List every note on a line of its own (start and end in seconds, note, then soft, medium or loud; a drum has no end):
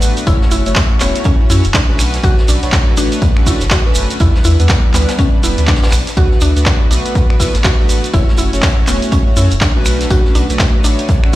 0.00 0.13 A1 loud
0.00 0.24 A3 medium
0.00 0.24 B3 medium
0.00 0.24 D4 medium
0.00 0.23 F#4 loud
0.00 0.24 F#4 medium
0.00 0.25 B4 loud
0.00 closed hi-hat medium
0.00 open hi-hat medium
0.00 shekere loud
0.17 closed hi-hat medium
0.17 shekere medium
0.27 0.38 F#1 loud
0.27 0.63 A3 medium
0.27 0.63 C#4 medium
0.27 0.63 E4 medium
0.27 0.38 E4 loud
0.27 0.63 F#4 medium
0.27 0.63 C#5 loud
0.27 kick loud
0.27 closed hi-hat medium
0.27 shekere soft
0.42 snare soft
0.51 0.62 F#1 loud
0.51 1.02 E4 loud
0.51 closed hi-hat medium
0.51 open hi-hat loud
0.51 shekere medium
0.66 0.73 F#1 medium
0.66 0.98 A3 medium
0.66 0.98 C#4 medium
0.66 0.98 E4 medium
0.66 0.98 F#4 medium
0.66 0.98 C#5 loud
0.66 closed hi-hat medium
0.66 shekere medium
0.76 kick loud
0.76 snare loud
0.76 clap loud
0.76 closed hi-hat loud
0.76 closed hi-hat medium
0.76 shekere soft
1.00 1.11 E1 medium
1.00 1.36 A3 medium
1.00 1.23 B3 loud
1.00 1.36 C#4 medium
1.00 1.37 E4 medium
1.00 1.37 F#4 medium
1.00 1.37 C#5 loud
1.00 clap medium
1.00 closed hi-hat medium
1.00 open hi-hat loud
1.00 shekere medium
1.15 closed hi-hat medium
1.15 shekere soft
1.24 1.50 C#4 loud
1.24 kick loud
1.24 closed hi-hat medium
1.24 shekere soft
1.40 1.48 A3 medium
1.40 1.48 C#4 medium
1.40 1.48 E4 medium
1.40 1.48 F#4 medium
1.40 1.48 C#5 medium
1.49 1.61 F#2 medium
1.49 1.65 A3 medium
1.49 1.65 C#4 medium
1.49 1.65 E4 medium
1.49 1.73 E4 loud
1.49 1.65 F#4 medium
1.49 1.66 C#5 loud
1.49 closed hi-hat medium
1.49 open hi-hat loud
1.49 shekere loud
1.64 1.72 E1 medium
1.64 closed hi-hat medium
1.64 shekere medium
1.74 2.11 D4 loud
1.74 kick loud
1.74 snare loud
1.74 clap loud
1.74 closed hi-hat medium
1.74 shekere soft
1.89 2.19 B1 medium
1.89 2.21 A3 medium
1.89 2.21 C#4 medium
1.89 2.21 D4 medium
1.89 2.21 F#4 medium
1.89 2.21 B4 loud
1.98 finger snap medium
1.98 open hi-hat medium
1.98 open hi-hat loud
1.98 shekere loud
2.14 snare soft
2.14 closed hi-hat medium
2.14 shekere medium
2.23 2.34 B1 loud
2.23 2.59 A3 medium
2.23 2.59 C#4 medium
2.23 2.59 D4 medium
2.23 2.59 F#4 medium
2.23 2.46 F#4 loud
2.23 2.60 B4 loud
2.23 kick loud
2.23 closed hi-hat medium
2.23 shekere soft
2.38 snare soft
2.48 2.59 B1 loud
2.48 2.96 D4 loud
2.48 closed hi-hat medium
2.48 open hi-hat loud
2.48 shekere loud
2.63 2.70 B1 medium
2.63 2.95 A3 medium
2.63 2.95 D4 medium
2.63 2.95 F#4 medium
2.63 2.95 B4 loud
2.63 2.95 C#5 medium
2.63 closed hi-hat medium
2.63 shekere medium
2.72 kick loud
2.72 snare loud
2.72 clap loud
2.72 closed hi-hat medium
2.72 shekere soft
2.97 3.08 A1 medium
2.97 3.33 A3 loud
2.97 3.33 D4 medium
2.97 3.48 D4 loud
2.97 3.33 F#4 medium
2.97 3.33 B4 loud
2.97 3.33 C#5 medium
2.97 closed hi-hat medium
2.97 open hi-hat loud
2.97 shekere loud
3.12 closed hi-hat medium
3.12 closed hi-hat soft
3.12 shekere medium
3.22 kick loud
3.22 closed hi-hat soft
3.22 closed hi-hat medium
3.22 shekere soft
3.36 3.44 A3 medium
3.36 3.44 C#4 medium
3.36 3.45 D4 medium
3.36 3.45 F#4 medium
3.36 3.45 B4 medium
3.36 finger snap medium
3.46 3.62 A3 loud
3.46 3.62 C#4 medium
3.46 3.62 D4 medium
3.46 3.69 E4 loud
3.46 3.62 F#4 medium
3.46 3.62 B4 loud
3.46 kick medium
3.46 closed hi-hat medium
3.46 open hi-hat loud
3.46 shekere medium
3.61 3.68 F#1 medium
3.61 snare soft
3.61 closed hi-hat medium
3.61 shekere medium
3.71 4.22 F#4 loud
3.71 finger snap medium
3.71 kick loud
3.71 snare loud
3.71 clap loud
3.71 closed hi-hat medium
3.71 shekere soft
3.86 4.18 A3 loud
3.86 4.18 C#4 medium
3.86 4.18 D4 medium
3.86 4.18 F#4 medium
3.86 4.18 B4 loud
3.95 4.06 F#1 loud
3.95 closed hi-hat medium
3.95 open hi-hat loud
3.95 shekere loud
4.10 closed hi-hat medium
4.10 shekere medium
4.20 4.31 E2 loud
4.20 4.56 G3 medium
4.20 4.56 B3 medium
4.20 4.56 D4 medium
4.20 4.56 E4 medium
4.20 4.44 E4 loud
4.20 4.56 B4 loud
4.20 kick loud
4.20 closed hi-hat medium
4.20 shekere soft
4.35 snare soft
4.44 4.56 E2 loud
4.44 4.95 E4 loud
4.44 closed hi-hat medium
4.44 open hi-hat loud
4.44 shekere loud
4.59 4.67 E2 medium
4.59 4.92 G3 medium
4.59 4.92 B3 medium
4.59 4.92 D4 medium
4.59 4.92 E4 medium
4.59 4.92 B4 loud
4.59 closed hi-hat medium
4.59 shekere medium
4.68 kick loud
4.68 snare loud
4.68 clap loud
4.68 closed hi-hat medium
4.68 shekere soft
4.94 5.05 D2 medium
4.94 5.30 G3 loud
4.94 5.30 B3 medium
4.94 5.19 B3 medium
4.94 5.30 D4 medium
4.94 5.30 E4 medium
4.94 5.30 B4 loud
4.94 snare loud
4.94 clap medium
4.94 closed hi-hat medium
4.94 open hi-hat medium
4.94 shekere loud
5.08 snare loud
5.08 closed hi-hat medium
5.08 shekere soft
5.18 5.44 C#4 loud
5.18 kick loud
5.18 closed hi-hat medium
5.18 shekere soft
5.33 5.41 G3 medium
5.33 5.41 B3 medium
5.33 5.41 D4 medium
5.33 5.41 E4 medium
5.33 5.41 B4 medium
5.43 5.54 E1 medium
5.43 5.56 G3 loud
5.43 5.56 B3 medium
5.43 5.56 D4 medium
5.43 5.56 E4 medium
5.43 5.66 E4 loud
5.43 5.56 B4 loud
5.43 closed hi-hat medium
5.43 open hi-hat loud
5.43 shekere medium
5.58 5.65 D2 medium
5.58 5.79 G3 loud
5.58 5.79 B3 medium
5.58 5.79 D4 medium
5.58 5.79 E4 medium
5.58 5.79 B4 loud
5.58 closed hi-hat medium
5.58 shekere medium
5.67 6.05 D4 loud
5.67 kick loud
5.67 snare medium
5.67 clap loud
5.67 closed hi-hat soft
5.67 closed hi-hat medium
5.67 shekere soft
5.75 snare medium
5.75 closed hi-hat medium
5.82 5.93 G3 medium
5.82 5.93 B3 medium
5.82 5.94 D4 medium
5.82 5.94 E4 medium
5.82 5.94 B4 loud
5.82 snare medium
5.82 closed hi-hat medium
5.87 snare medium
5.87 closed hi-hat medium
5.92 6.03 B1 medium
5.92 finger snap medium
5.92 open hi-hat loud
5.92 open hi-hat medium
5.92 shekere loud
6.07 snare soft
6.07 closed hi-hat medium
6.07 shekere medium
6.17 6.28 D2 loud
6.17 6.53 A3 medium
6.17 6.53 B3 medium
6.17 6.53 D4 medium
6.17 6.42 F#4 loud
6.17 6.53 F#4 medium
6.17 6.53 B4 loud
6.17 kick loud
6.17 closed hi-hat medium
6.17 shekere soft
6.32 snare soft
6.41 6.52 D2 loud
6.41 6.87 D4 loud
6.41 closed hi-hat medium
6.41 open hi-hat loud
6.41 shekere medium
6.56 6.63 D2 medium
6.56 6.88 A3 medium
6.56 6.88 B3 medium
6.56 6.88 D4 medium
6.56 6.88 F#4 medium
6.56 6.89 B4 loud
6.56 closed hi-hat medium
6.56 shekere medium
6.66 kick loud
6.66 snare loud
6.66 clap loud
6.66 closed hi-hat medium
6.66 shekere soft
6.90 7.01 B1 loud
6.90 7.26 A3 loud
6.90 7.27 B3 medium
6.90 7.36 D4 medium
6.90 7.27 D4 medium
6.90 7.27 F#4 medium
6.90 7.27 B4 loud
6.90 closed hi-hat medium
6.90 open hi-hat loud
6.90 shekere medium
7.05 closed hi-hat medium
7.05 closed hi-hat soft
7.05 shekere medium
7.15 kick loud
7.15 closed hi-hat soft
7.15 closed hi-hat medium
7.15 shekere soft
7.30 7.38 A3 medium
7.30 7.38 B3 medium
7.30 7.38 D4 medium
7.30 7.38 F#4 medium
7.30 7.38 B4 medium
7.30 finger snap medium
7.40 7.55 A3 loud
7.40 7.55 B3 medium
7.40 7.56 D4 medium
7.40 7.65 E4 loud
7.40 7.56 F#4 medium
7.40 7.56 B4 loud
7.40 kick medium
7.40 closed hi-hat medium
7.40 open hi-hat loud
7.40 shekere medium
7.54 7.62 A1 medium
7.54 snare soft
7.54 closed hi-hat medium
7.54 shekere medium
7.64 8.10 F#4 loud
7.64 finger snap medium
7.64 kick loud
7.64 snare loud
7.64 clap loud
7.64 closed hi-hat medium
7.64 shekere soft
7.79 8.11 A3 loud
7.79 8.11 B3 medium
7.79 8.11 D4 medium
7.79 8.11 F#4 medium
7.79 8.11 B4 loud
7.89 8.00 A1 loud
7.89 closed hi-hat medium
7.89 open hi-hat loud
7.89 shekere medium
8.04 closed hi-hat medium
8.04 shekere medium
8.13 8.24 F#1 loud
8.13 8.49 A3 medium
8.13 8.50 C#4 medium
8.13 8.37 E4 loud
8.13 8.50 E4 medium
8.13 8.50 F#4 medium
8.13 8.50 C#5 loud
8.13 kick loud
8.13 closed hi-hat medium
8.13 shekere soft
8.29 snare soft
8.38 8.49 F#1 loud
8.38 8.84 E4 loud
8.38 closed hi-hat medium
8.38 open hi-hat loud
8.38 shekere medium
8.53 8.60 F#1 medium
8.53 8.85 A3 medium
8.53 8.85 C#4 medium
8.53 8.85 E4 medium
8.53 8.85 F#4 medium
8.53 8.85 C#5 loud
8.53 closed hi-hat medium
8.53 shekere medium
8.62 kick loud
8.62 snare loud
8.62 clap loud
8.62 closed hi-hat medium
8.62 closed hi-hat loud
8.62 shekere soft
8.87 8.98 E1 medium
8.87 9.23 A3 loud
8.87 9.13 B3 medium
8.87 9.23 C#4 medium
8.87 9.23 E4 medium
8.87 9.23 F#4 medium
8.87 9.23 C#5 loud
8.87 clap medium
8.87 closed hi-hat medium
8.87 open hi-hat medium
8.87 shekere loud
9.02 closed hi-hat medium
9.02 shekere soft
9.12 9.23 C#4 loud
9.12 kick loud
9.12 closed hi-hat medium
9.12 shekere soft
9.27 9.35 A3 medium
9.27 9.35 C#4 medium
9.27 9.35 E4 medium
9.27 9.35 F#4 medium
9.27 9.35 C#5 medium
9.36 9.47 F#2 medium
9.36 9.52 A3 loud
9.36 9.52 C#4 medium
9.36 9.52 E4 medium
9.36 9.48 E4 loud
9.36 9.52 F#4 medium
9.36 9.52 C#5 loud
9.36 closed hi-hat medium
9.36 open hi-hat loud
9.36 shekere loud
9.51 9.59 E1 medium
9.51 closed hi-hat medium
9.51 shekere medium
9.61 9.98 D4 loud
9.61 kick loud
9.61 snare loud
9.61 clap loud
9.61 closed hi-hat medium
9.61 shekere soft
9.76 10.06 B1 medium
9.76 10.08 A3 loud
9.76 10.08 C#4 medium
9.76 10.08 D4 medium
9.76 10.08 F#4 medium
9.76 10.08 B4 loud
9.85 finger snap medium
9.85 open hi-hat medium
9.85 shekere medium
10.01 snare soft
10.01 closed hi-hat medium
10.01 shekere medium
10.10 10.21 B1 loud
10.10 10.46 A3 medium
10.10 10.46 C#4 medium
10.10 10.46 D4 medium
10.10 10.33 F#4 loud
10.10 10.46 F#4 medium
10.10 10.46 B4 loud
10.10 kick loud
10.10 closed hi-hat medium
10.10 shekere soft
10.25 snare soft
10.35 10.46 B1 loud
10.35 10.83 D4 medium
10.35 closed hi-hat medium
10.35 open hi-hat loud
10.35 shekere medium
10.50 10.57 B1 medium
10.50 10.82 A3 medium
10.50 10.82 D4 medium
10.50 10.82 F#4 medium
10.50 10.82 B4 loud
10.50 10.82 C#5 medium
10.50 closed hi-hat medium
10.50 shekere medium
10.59 kick loud
10.59 snare loud
10.59 clap loud
10.59 closed hi-hat medium
10.59 closed hi-hat loud
10.59 shekere soft
10.84 10.95 A1 medium
10.84 11.20 A3 loud
10.84 11.35 D4 loud
10.84 11.20 D4 medium
10.84 11.20 F#4 medium
10.84 11.20 B4 loud
10.84 11.20 C#5 medium
10.84 closed hi-hat medium
10.84 open hi-hat medium
10.84 shekere medium
10.99 closed hi-hat medium
10.99 closed hi-hat soft
10.99 shekere soft
11.09 kick loud
11.09 closed hi-hat medium
11.09 shekere soft
11.23 11.31 A3 medium
11.23 11.31 C#4 medium
11.23 11.31 D4 medium
11.23 11.31 F#4 medium
11.23 11.32 B4 medium
11.23 finger snap medium